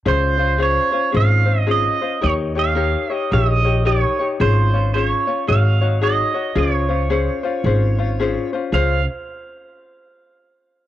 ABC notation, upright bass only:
X:1
M:4/4
L:1/8
Q:"Swing" 1/4=111
K:Db
V:1 name="Upright bass" clef=bass
D,,4 A,,,4 | E,,4 B,,,4 | A,,,4 A,,,4 | D,,4 A,,,4 |
D,, z6 z |]